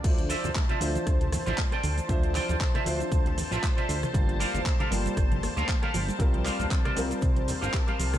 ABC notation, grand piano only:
X:1
M:4/4
L:1/8
Q:"Swing 16ths" 1/4=117
K:Dm
V:1 name="Grand piano"
[F,Dce]3 [F,Dce]4- [F,Dce] | [F,Dce]3 [F,Dce]4- [F,Dce] | [G,B,Fa]3 [G,B,Fa]4- [G,B,Fa] | [G,CFB]3 [G,CFB]4- [G,CFB] |]